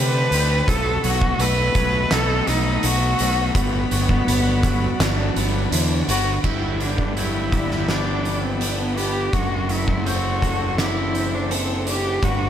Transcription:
Already playing: C3 D3 A3 C4 A4 B4 D5 F#5 A5
0.31 D2 C4, closed hi-hat
0.68 B1 B2 A4 D#5 F#5 B5, kick, closed hi-hat
1.04 B1 F#3 F#4, closed hi-hat
1.22 kick
1.39 B1 A3 B4, closed hi-hat
1.75 B1 F#3, kick, closed hi-hat
2.10 B1 D#4 A4, snare, closed hi-hat
2.47 B1 A3 D#4, closed hi-hat
2.83 B1 B2 F#4, closed hi-hat
3.19 B1 A3, closed hi-hat
3.53 G1 G2 B3 F#4 D5, kick, closed hi-hat
3.91 G1 F#3, closed hi-hat
4.09 kick
4.27 G1 B3, closed hi-hat
4.63 F#3, kick, closed hi-hat
5.00 G1 D4, snare, closed hi-hat
5.36 G1 B3, closed hi-hat
5.71 E2 D3, closed hi-hat
6.08 G1 B3 F#4, closed hi-hat
6.44 G1 G2 E4 D5 F#5 G5 B5, kick, crash
6.80 D3 D4, closed hi-hat
6.98 kick
7.17 F#3 E4, closed hi-hat
7.52 D4, kick, closed hi-hat
7.71 snare
7.89 B3 D4, snare, closed hi-hat
8.25 closed hi-hat
8.43 C4
8.60 B3 D4, closed hi-hat
8.96 B3 G4, closed hi-hat
9.33 F#1 F#3 F#4 A4 C6, kick, closed hi-hat
9.69 F#3 E4, closed hi-hat
9.88 kick
10.06 C4 F#4, closed hi-hat
10.42 A4, kick, closed hi-hat
10.78 D4 E4, snare, closed hi-hat
11.14 C4, closed hi-hat
11.34 D4
11.51 C4 A4, closed hi-hat
11.87 D4 G4, closed hi-hat
12.23 G1 G3 F#4 D5 B5, kick, closed hi-hat

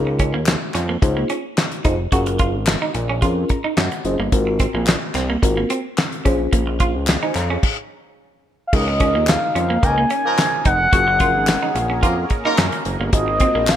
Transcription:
Already playing: C#2 D#4 F4 G#4 A#4
0.07 muted clean electric guitar stroke
0.19 C#4, kick, closed hi-hat
0.34 D#2 A#3
0.46 muted clean electric guitar stroke, snare, clap, closed hi-hat
0.48 clap
0.74 F2 C#4, clap, closed hi-hat
0.89 A#3
1.02 C#2 D#4 F4 G#4 C5, muted clean electric guitar stroke, kick, closed hi-hat
1.17 A#3
1.30 C#4, closed hi-hat
1.57 snare, clap, closed hi-hat
1.72 closed hi-hat
1.84 F1 D#4 F4 G#4 C5, kick, closed hi-hat
2.12 F#1 C#4 F4 F#4 G#4 A#4, kick, closed hi-hat
2.26 muted clean electric guitar stroke, closed hi-hat
2.39 F4, kick, closed hi-hat
2.54 G#1
2.66 snare, clap, closed hi-hat
2.68 clap
2.82 D#4
2.94 A#1, muted clean electric guitar stroke, closed hi-hat
3.09 C#4
3.22 F2 C#4 F4 G#4 A#4, kick, closed hi-hat
3.49 A#5, muted clean electric guitar stroke, kick, closed hi-hat
3.64 D#4
3.77 F#2 C#4 F#5, snare, clap, closed hi-hat
3.92 muted clean electric guitar stroke, closed hi-hat
4.05 F#1 C#4 F4 G#4 C5 D#5, closed hi-hat
4.19 G1 A#3
4.32 G#1 C4 F4 F#4 A#4, kick, closed hi-hat
4.47 muted clean electric guitar stroke
4.59 C4, kick, closed hi-hat
4.74 A#1 A#3
4.86 muted clean electric guitar stroke, snare, clap, closed hi-hat
4.89 clap
5.15 C2 C4, clap, closed hi-hat
5.30 A#3
5.42 G#1 C4 F4 F#4 A#4, muted clean electric guitar stroke, kick, closed hi-hat
5.57 A#3
5.70 C4, closed hi-hat
5.97 snare, clap, closed hi-hat
6.12 closed hi-hat
6.25 A#1 C#4 F4 G#4 C5, kick, closed hi-hat
6.53 A#1 A#3, kick, closed hi-hat
6.67 muted clean electric guitar stroke
6.80 F4, kick, closed hi-hat
6.95 C#2
7.07 G#4 F5, snare, clap, closed hi-hat
7.09 clap
7.23 D#4 C5 G#5
7.35 F2 C#5 A#5, muted clean electric guitar stroke, clap, closed hi-hat
7.50 C#4 G#4 F5
7.63 kick, crash
8.67 F5
8.73 C#2 C#3 A#3 D#4 F4 G#4 A#4 D#5, kick, crash
8.88 muted clean electric guitar stroke
9.00 C#4 D#4 F4 G#4 A#4, kick, closed hi-hat
9.15 D#2 A#3
9.27 F5, muted clean electric guitar stroke, snare, clap, closed hi-hat
9.29 clap
9.55 F2 C#4, closed hi-hat
9.70 A#3
9.83 C#2 F3 A#3 D#4 A#4 G#5, muted clean electric guitar stroke, kick, closed hi-hat
9.98 A#3
10.10 C#4 G#5, closed hi-hat
10.25 F3 A#3 D#4 A#4
10.38 snare, clap, closed hi-hat
10.65 F1 D#4 F#5, kick, closed hi-hat
10.92 F#1 A#3 C#4 F4 F#4 G#4 A#4, kick, closed hi-hat
11.08 muted clean electric guitar stroke
11.20 F3 C#4 F4 G#4 A#4, kick, closed hi-hat
11.35 G#1
11.47 snare, clap, closed hi-hat
11.49 clap
11.63 D#4
11.75 A#1, muted clean electric guitar stroke, closed hi-hat
11.90 C#4
12.02 F2 F#3 A#3 F4 A#4, kick, closed hi-hat
12.30 muted clean electric guitar stroke, kick, closed hi-hat
12.44 F#3 A#3 D#4 F4 A#4
12.57 F#2 C#4, snare, clap, closed hi-hat
12.72 muted clean electric guitar stroke, closed hi-hat
12.85 F#1, closed hi-hat
13.00 G1 A#3
13.13 G#1 G#3 C4 F4 F#4 A#4 D#5, kick, closed hi-hat
13.28 muted clean electric guitar stroke
13.40 C4 F4 F#4 A#4, kick, closed hi-hat
13.55 A#1 A#3
13.67 muted clean electric guitar stroke, snare, clap, closed hi-hat
13.69 F5, clap

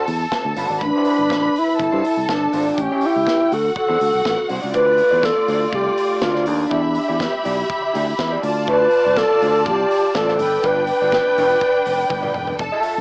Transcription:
Already playing: A4 A5
0.07 E2, muted clean electric guitar stroke, open hi-hat
0.20 muted clean electric guitar stroke
0.32 muted clean electric guitar stroke, kick, snare, closed hi-hat
0.45 D2, muted clean electric guitar stroke
0.56 G1 D4 F#4 C5, open hi-hat
0.70 G#1 D4 F#4 D5
0.80 A1 D4 B4 B5, muted clean electric guitar stroke, kick, closed hi-hat
0.96 E4 G4 C5
1.05 E4 G4 C5, open hi-hat
1.19 G1, muted clean electric guitar stroke
1.30 A1, muted clean electric guitar stroke, kick, snare, closed hi-hat
1.44 muted clean electric guitar stroke
1.56 E4, open hi-hat
1.68 muted clean electric guitar stroke
1.79 G1 A4 A5, muted clean electric guitar stroke, kick, closed hi-hat
1.92 G2 D4 F4 C5
2.05 muted clean electric guitar stroke, open hi-hat
2.17 C2, muted clean electric guitar stroke
2.28 G1 D4, muted clean electric guitar stroke, kick, snare
2.41 muted clean electric guitar stroke
2.53 G#1 D4 F4 C5, open hi-hat
2.66 D4 F4 D5
2.78 A1 C#4 G4 G5, muted clean electric guitar stroke, kick, closed hi-hat
2.91 E4 G4 C#5
3.01 E4 G4 C#5, open hi-hat
3.06 E4
3.16 C#2, muted clean electric guitar stroke
3.27 muted clean electric guitar stroke, kick, snare, closed hi-hat
3.42 muted clean electric guitar stroke
3.52 D2 F#4 A4 F#5, open hi-hat
3.65 muted clean electric guitar stroke
3.76 A4, muted clean electric guitar stroke, kick
3.89 E2 D4 F#4 C5
4.01 D2, muted clean electric guitar stroke, open hi-hat
4.13 C2, muted clean electric guitar stroke
4.25 A1, muted clean electric guitar stroke, kick, snare, closed hi-hat
4.38 muted clean electric guitar stroke
4.49 C2 D4 F#4 C5, open hi-hat
4.61 C#2 D4 F#4 D5
4.74 D2 A3 F4 B4 C5 D5, kick, closed hi-hat
4.87 muted clean electric guitar stroke
4.98 muted clean electric guitar stroke, open hi-hat
5.11 E2 F4 C5 D5
5.23 A4, kick, snare, closed hi-hat
5.35 muted clean electric guitar stroke
5.48 D2 F4 C5 D5, open hi-hat
5.61 muted clean electric guitar stroke
5.72 C2 G4, muted clean electric guitar stroke, kick, closed hi-hat
5.86 muted clean electric guitar stroke
5.97 open hi-hat
6.11 muted clean electric guitar stroke
6.22 D2 F4, muted clean electric guitar stroke, kick, snare
6.34 F4 C5 D5, snare
6.46 D#2 D4, muted clean electric guitar stroke, open hi-hat
6.59 muted clean electric guitar stroke
6.69 E2 E4 G4 D5 E5 B5, kick, closed hi-hat
6.83 muted clean electric guitar stroke
6.94 muted clean electric guitar stroke, open hi-hat
7.08 E2 E4 G4 D5
7.20 kick, snare, closed hi-hat
7.33 muted clean electric guitar stroke
7.44 B1 E4 G4 D5, open hi-hat
7.58 muted clean electric guitar stroke
7.70 kick, closed hi-hat
7.82 muted clean electric guitar stroke
7.93 D2 E4 G4 D5, open hi-hat
8.07 muted clean electric guitar stroke
8.19 E2, muted clean electric guitar stroke, kick, snare
8.32 E4 G4 D5
8.43 D2 F4 D5 A5, open hi-hat
8.57 muted clean electric guitar stroke
8.67 F4 B4 C5 D5, kick, closed hi-hat
8.81 muted clean electric guitar stroke
8.91 muted clean electric guitar stroke, open hi-hat
9.04 C2 F4 C5 D5
9.17 A4, kick, snare, closed hi-hat
9.30 muted clean electric guitar stroke
9.42 D2 F4 C5 D5, open hi-hat
9.54 muted clean electric guitar stroke
9.66 C2 G4, muted clean electric guitar stroke, kick, closed hi-hat
9.78 muted clean electric guitar stroke
9.91 open hi-hat
10.03 muted clean electric guitar stroke
10.15 A1 A4, muted clean electric guitar stroke, kick, snare, closed hi-hat
10.28 F4 C5 D5, snare
10.39 G1 D4 B4 G5, muted clean electric guitar stroke, open hi-hat
10.52 muted clean electric guitar stroke
10.63 G1 F4 B4 D5, kick, closed hi-hat
10.76 muted clean electric guitar stroke
10.87 B4, muted clean electric guitar stroke, open hi-hat
11.02 G1 F4 B4 D5
11.12 kick, snare, closed hi-hat
11.26 muted clean electric guitar stroke
11.37 E1 F4 B4 D5, open hi-hat
11.50 muted clean electric guitar stroke
11.61 muted clean electric guitar stroke, kick, closed hi-hat
11.74 muted clean electric guitar stroke
11.86 F1, open hi-hat
11.98 muted clean electric guitar stroke
12.10 G1, muted clean electric guitar stroke, kick, high tom
12.22 F4 B4 D5, mid tom
12.34 E1, muted clean electric guitar stroke, mid tom
12.47 muted clean electric guitar stroke, floor tom
12.59 F1 A4 A5, muted clean electric guitar stroke, kick, closed hi-hat
12.72 F4 A4 E5
12.83 F4 A4 E5, open hi-hat
12.96 muted clean electric guitar stroke

